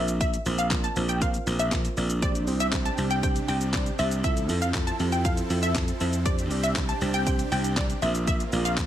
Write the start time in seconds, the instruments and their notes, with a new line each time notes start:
Already playing: slap bass A#1, synth pluck C4 F4 A#4 C5
0.08 closed hi-hat, shaker
0.21 synth pluck E5, kick, closed hi-hat, shaker
0.34 closed hi-hat, shaker
0.46 slap bass A#1, synth pluck C4 F4 A#4 C5, open hi-hat, shaker
0.59 synth pluck F5, closed hi-hat, shaker
0.70 synth pluck C4 F4 A#4 D5, kick, snare, clap, closed hi-hat, shaker
0.84 synth pluck A5, closed hi-hat, shaker
0.96 slap bass A#1, synth pluck C4 F4 A#4 C5, open hi-hat, shaker
1.09 synth pluck G5, closed hi-hat, shaker
1.21 synth pluck C4 F4 A#4 C5 F5, kick, closed hi-hat, shaker
1.34 closed hi-hat, shaker
1.46 slap bass A#1, synth pluck C4 F4 A#4 C5, open hi-hat, shaker
1.59 synth pluck E5, closed hi-hat, shaker
1.71 synth pluck C4 F4 A#4 C5, kick, snare, clap, closed hi-hat, shaker
1.85 closed hi-hat, shaker
1.97 slap bass A#1, synth pluck C4 F4 A#4 D5, open hi-hat, shaker
2.10 closed hi-hat, shaker
2.22 supersaw synth C3 C4 D4 G4, synth pluck C4 D4 G4 C5 D5, kick, closed hi-hat, shaker
2.35 closed hi-hat, shaker
2.47 slap bass C2, synth pluck C4 D4 G4 C5, open hi-hat, shaker
2.60 synth pluck E5, closed hi-hat, shaker
2.72 synth pluck C4 D4 G4 C5, kick, snare, clap, closed hi-hat, shaker
2.85 synth pluck A5, closed hi-hat, shaker
2.98 slap bass C2, synth pluck C4 D4 G4 C5, open hi-hat, shaker
3.11 synth pluck G5, closed hi-hat, shaker
3.23 synth pluck C4 D4 G4 C5 G5, kick, closed hi-hat, shaker
3.36 closed hi-hat, shaker
3.48 slap bass C2, synth pluck C4 D4 G4 C5 G5, open hi-hat, shaker
3.61 closed hi-hat, shaker
3.73 synth pluck C4 D4 G4 C5 D5, kick, snare, clap, closed hi-hat, shaker
3.86 closed hi-hat, shaker
3.99 slap bass C2, synth pluck C4 D4 G4 C5 E5, open hi-hat, shaker
4.11 closed hi-hat, shaker
4.24 supersaw synth F3 A4, synth pluck C4 E4 F4 A4 E5, kick, closed hi-hat, shaker
4.37 closed hi-hat, shaker
4.49 slap bass F2, synth pluck C4 E4 F4 A4, open hi-hat, shaker
4.62 synth pluck F5, closed hi-hat, shaker
4.74 synth pluck C4 E4 F4 A4, kick, snare, clap, closed hi-hat, shaker
4.87 synth pluck A5, closed hi-hat, shaker
4.99 slap bass F2, synth pluck C4 E4 F4 G4, open hi-hat, shaker
5.12 synth pluck G5, closed hi-hat, shaker
5.25 synth pluck C4 E4 F4 A4 F5, kick, closed hi-hat, shaker
5.37 closed hi-hat, shaker
5.50 slap bass F2, synth pluck C4 E4 F4 A4, open hi-hat, shaker
5.63 synth pluck E5, closed hi-hat, shaker
5.75 synth pluck C4 E4 F4 A4, kick, snare, clap, closed hi-hat, shaker
5.88 closed hi-hat, shaker
6.00 slap bass F2, synth pluck C4 E4 F4 A4, open hi-hat, shaker
6.13 closed hi-hat, shaker
6.26 supersaw synth C3 D4, synth pluck C4 D4 G4 C5 D5, kick, closed hi-hat, shaker
6.39 closed hi-hat, shaker
6.51 slap bass C2, synth pluck C4 D4 G4 D5, open hi-hat, shaker
6.64 synth pluck E5, closed hi-hat, shaker
6.75 synth pluck C4 D4 G4 C5, kick, snare, clap, closed hi-hat, shaker
6.89 synth pluck A5, closed hi-hat, shaker
7.01 slap bass C2, synth pluck C4 D4 G4 C5, open hi-hat, shaker
7.14 synth pluck G5, closed hi-hat, shaker
7.26 synth pluck C4 D4 G4 C5 G5, kick, closed hi-hat, shaker
7.39 closed hi-hat, shaker
7.52 slap bass C2, synth pluck C4 D4 G4 C5 G5, open hi-hat, shaker
7.64 closed hi-hat, shaker
7.76 synth pluck C4 D4 G4 C5 D5, kick, snare, clap, closed hi-hat, shaker
7.90 closed hi-hat, shaker
8.02 slap bass A#1, supersaw synth A#3 F4, synth pluck C4 F4 A#4 C5 E5, open hi-hat, shaker
8.15 closed hi-hat, shaker
8.27 synth pluck E5, kick, closed hi-hat, shaker
8.40 closed hi-hat, shaker
8.52 slap bass A#1, synth pluck C4 F4 A#4 D5, open hi-hat, shaker
8.65 synth pluck F5, closed hi-hat, shaker
8.77 synth pluck C4 F4 A#4 C5, kick, snare, clap, closed hi-hat, shaker